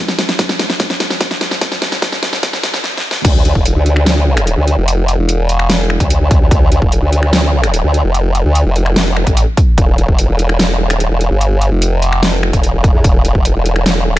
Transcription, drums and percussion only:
0.08 snare
0.19 snare, closed hi-hat
0.29 snare, closed hi-hat
0.39 kick, snare, closed hi-hat
0.49 snare
0.59 snare, closed hi-hat
0.70 snare
0.80 kick, snare, closed hi-hat
0.90 snare
1.00 snare, closed hi-hat
1.10 snare
1.21 kick, snare, closed hi-hat
1.31 snare
1.41 snare, closed hi-hat
1.51 snare
1.61 kick, snare, closed hi-hat
1.72 snare
1.82 snare, closed hi-hat
1.92 snare, closed hi-hat
2.02 kick, snare, closed hi-hat
2.12 snare
2.23 snare, closed hi-hat
2.33 snare
2.43 kick, snare, closed hi-hat
2.53 snare
2.63 snare, closed hi-hat
2.74 snare
2.84 snare
2.97 snare
3.11 snare
3.25 kick, closed hi-hat, crash
3.45 closed hi-hat
3.55 kick
3.66 closed hi-hat
3.86 closed hi-hat
3.96 finger snap
4.06 snare, closed hi-hat
4.37 finger snap, closed hi-hat
4.47 closed hi-hat
4.67 closed hi-hat
4.88 closed hi-hat
5.08 closed hi-hat
5.29 closed hi-hat
5.49 closed hi-hat
5.59 finger snap
5.70 snare, closed hi-hat
5.90 finger snap
6.00 kick, closed hi-hat
6.10 closed hi-hat
6.31 kick, closed hi-hat
6.51 kick, closed hi-hat
6.72 closed hi-hat
6.82 kick
6.92 closed hi-hat
7.13 closed hi-hat
7.23 finger snap
7.33 snare, closed hi-hat
7.64 finger snap, closed hi-hat
7.74 closed hi-hat
7.94 closed hi-hat
8.15 closed hi-hat
8.35 closed hi-hat
8.55 closed hi-hat
8.76 closed hi-hat
8.86 finger snap
8.96 snare, closed hi-hat
9.17 finger snap
9.27 kick, closed hi-hat
9.37 closed hi-hat
9.57 kick, closed hi-hat
9.78 kick, closed hi-hat
9.98 closed hi-hat
10.08 kick
10.19 closed hi-hat
10.39 closed hi-hat
10.49 finger snap
10.59 snare, closed hi-hat
10.90 finger snap, closed hi-hat
11.00 closed hi-hat
11.21 closed hi-hat
11.41 closed hi-hat
11.61 closed hi-hat
11.82 closed hi-hat
12.02 closed hi-hat
12.13 finger snap
12.23 snare, closed hi-hat
12.43 finger snap
12.53 kick, closed hi-hat
12.64 closed hi-hat
12.84 kick, closed hi-hat
13.04 kick, closed hi-hat
13.25 closed hi-hat
13.35 kick
13.45 closed hi-hat
13.66 closed hi-hat
13.76 finger snap
13.86 snare, closed hi-hat

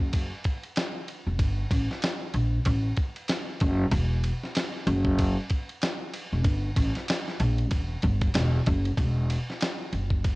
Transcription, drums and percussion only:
0.13 kick, ride
0.44 kick, ride
0.63 ride
0.76 snare, hi-hat pedal, ride
1.08 ride
1.39 kick, ride
1.71 kick, ride
1.91 snare
2.02 snare, hi-hat pedal, ride
2.34 ride
2.65 kick, ride
2.97 kick, ride
3.16 ride
3.28 snare, hi-hat pedal, ride
3.60 kick, ride
3.91 kick, ride
4.24 ride
4.43 snare
4.55 snare, hi-hat pedal, ride
4.87 ride
5.05 kick
5.19 kick, ride
5.50 kick, ride
5.69 ride
5.82 snare, hi-hat pedal, ride
6.13 ride
6.44 kick, ride
6.76 kick, ride
6.95 snare, ride
7.08 snare, hi-hat pedal, ride
7.28 snare
7.40 ride
7.58 ride
7.71 kick, ride
8.02 kick, ride
8.21 kick, ride
8.34 snare, hi-hat pedal, ride
8.66 kick, ride
8.86 ride
8.98 kick, ride
9.30 ride
9.50 snare
9.61 snare, hi-hat pedal, ride
9.93 ride
10.10 kick
10.24 kick, ride

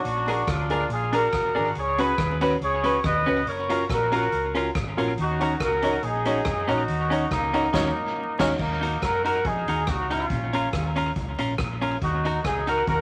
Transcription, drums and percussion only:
0.05 closed hi-hat
0.28 closed hi-hat
0.47 kick, cross-stick, closed hi-hat
0.70 closed hi-hat
0.90 closed hi-hat
1.13 closed hi-hat
1.33 kick, cross-stick, closed hi-hat
1.56 open hi-hat
1.75 closed hi-hat
1.98 closed hi-hat
2.18 kick, cross-stick, closed hi-hat
2.41 closed hi-hat
2.62 closed hi-hat
2.84 closed hi-hat
3.04 kick, cross-stick, closed hi-hat
3.27 open hi-hat
3.47 closed hi-hat
3.70 closed hi-hat
3.89 kick, cross-stick, closed hi-hat
4.12 closed hi-hat
4.32 closed hi-hat
4.55 closed hi-hat
4.75 kick, cross-stick, closed hi-hat
4.98 closed hi-hat
5.18 closed hi-hat
5.41 closed hi-hat
5.60 kick, cross-stick, closed hi-hat
5.82 closed hi-hat
6.03 closed hi-hat
6.25 closed hi-hat
6.45 kick, cross-stick, closed hi-hat
6.69 closed hi-hat
6.88 closed hi-hat
7.11 closed hi-hat
7.31 kick, cross-stick, closed hi-hat
7.54 closed hi-hat
7.74 kick, snare, crash
8.40 kick, snare, crash
8.59 kick, crash
8.83 closed hi-hat
9.02 kick, cross-stick, closed hi-hat
9.25 closed hi-hat
9.45 kick, closed hi-hat
9.68 closed hi-hat
9.87 kick, cross-stick, closed hi-hat
10.11 closed hi-hat
10.30 kick, closed hi-hat
10.53 closed hi-hat
10.73 kick, cross-stick, closed hi-hat
10.96 closed hi-hat
11.16 kick, closed hi-hat
11.39 closed hi-hat
11.58 kick, cross-stick, closed hi-hat
11.82 closed hi-hat
12.02 kick, closed hi-hat
12.25 closed hi-hat
12.44 kick, cross-stick, closed hi-hat
12.67 closed hi-hat
12.87 kick, closed hi-hat

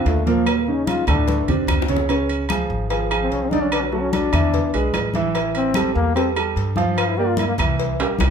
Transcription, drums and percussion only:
0.06 cowbell, high conga, low timbale
0.27 cowbell, high conga
0.46 cowbell, high conga, low agogo, claves
0.67 high conga
0.87 cowbell, high conga, low agogo
1.07 cowbell, high conga, low conga, low agogo, claves
1.28 cowbell, high conga
1.48 low conga, low agogo
1.68 cowbell, high bongo, low conga, low agogo, claves
1.82 high bongo
1.88 cowbell, low conga
1.96 low bongo
2.09 cowbell, high conga, low agogo
2.29 high conga, low agogo
2.49 cowbell, high conga, low agogo, claves
2.71 high conga
2.90 cowbell, high conga, low agogo
3.11 high conga, low agogo, claves
3.31 cowbell, high conga
3.51 cowbell, high conga
3.72 cowbell, high conga, low agogo, claves
3.92 high conga
4.13 cowbell, high conga, low agogo
4.33 cowbell, high conga, low conga, low agogo, claves
4.54 cowbell, high conga, low conga
4.73 high conga, low agogo
4.94 cowbell, high conga, low timbale, low agogo, claves
5.14 cowbell, high conga
5.34 cowbell, high conga, low agogo
5.54 high conga, low agogo
5.74 cowbell, high conga, low agogo, claves
5.95 high conga
6.15 cowbell, high conga, low agogo
6.35 high conga, low agogo, claves
6.56 cowbell, high conga
6.76 cowbell, high conga
6.97 cowbell, high conga, low agogo, claves
7.17 high conga
7.37 cowbell, high conga, low agogo
7.58 cowbell, high conga, low conga, low agogo, claves
7.78 cowbell, high conga
7.99 high conga, high timbale, low agogo
8.19 cowbell, high bongo, high conga, low timbale, low agogo, claves

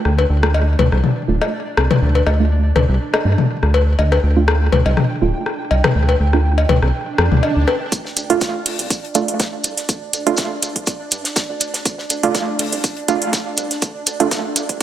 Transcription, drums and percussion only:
0.05 cross-stick
0.18 cowbell
0.43 cross-stick
0.54 cowbell
0.79 high tom, cowbell
0.92 cross-stick
1.04 high tom
1.41 cross-stick, cowbell
1.77 cross-stick
1.91 high tom, cowbell
2.15 cowbell
2.27 cross-stick, cowbell
2.76 cross-stick, high tom, cowbell
3.14 cross-stick, cowbell
3.38 high tom
3.63 cross-stick
3.74 cowbell
3.99 cowbell
4.12 cross-stick, cowbell
4.48 cross-stick
4.72 high tom, cowbell
4.86 cowbell
4.97 cross-stick, high tom
5.46 cross-stick
5.71 cowbell
5.84 cross-stick, high tom, cowbell
6.09 cowbell
6.33 cross-stick
6.58 cowbell
6.69 high tom, cowbell
6.82 cross-stick
7.18 cross-stick
7.32 high tom
7.43 cowbell
7.68 cross-stick, cowbell
7.92 kick, closed hi-hat, shaker
8.05 snare
8.17 closed hi-hat, shaker
8.30 closed hi-hat
8.41 kick, snare, closed hi-hat, shaker
8.66 closed hi-hat, open hi-hat
8.79 closed hi-hat
8.90 kick, closed hi-hat, shaker
9.05 closed hi-hat
9.15 closed hi-hat, shaker
9.28 closed hi-hat
9.40 kick, snare, closed hi-hat, shaker
9.64 closed hi-hat, shaker
9.77 snare, closed hi-hat
9.89 kick, closed hi-hat, shaker
10.13 closed hi-hat, shaker
10.27 closed hi-hat
10.37 kick, snare, closed hi-hat, shaker
10.63 closed hi-hat, shaker
10.76 kick, closed hi-hat
10.86 kick, closed hi-hat, shaker
11.11 closed hi-hat, shaker
11.24 snare, closed hi-hat
11.36 kick, snare, closed hi-hat, shaker
11.60 closed hi-hat, shaker
11.74 snare, closed hi-hat
11.86 kick, closed hi-hat, shaker
11.98 snare
12.10 closed hi-hat, shaker
12.23 closed hi-hat
12.34 kick, snare, closed hi-hat, shaker
12.59 closed hi-hat, open hi-hat
12.73 closed hi-hat
12.84 kick, closed hi-hat, shaker
12.97 closed hi-hat
13.08 closed hi-hat, shaker
13.22 closed hi-hat
13.33 kick, snare, closed hi-hat, shaker
13.57 closed hi-hat, shaker
13.71 snare, closed hi-hat
13.82 kick, closed hi-hat, shaker
14.07 closed hi-hat, shaker
14.20 closed hi-hat
14.31 kick, snare, closed hi-hat, shaker
14.56 closed hi-hat, shaker
14.69 kick, closed hi-hat

